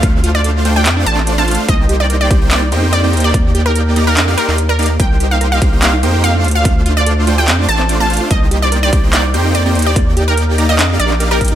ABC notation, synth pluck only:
X:1
M:4/4
L:1/16
Q:1/4=145
K:Cdor
V:1 name="Synth pluck"
f z2 d2 z2 g2 z a2 z a2 z | e2 z d z d2 z d2 z2 d2 z d- | d z2 B2 z2 B2 z B2 z B2 z | g2 z f z f2 z f2 z2 f2 z f- |
f z2 d2 z2 g2 z a2 z a2 z | e2 z d z d2 z d2 z2 d2 z d- | d z2 B2 z2 e2 z d2 z B2 z |]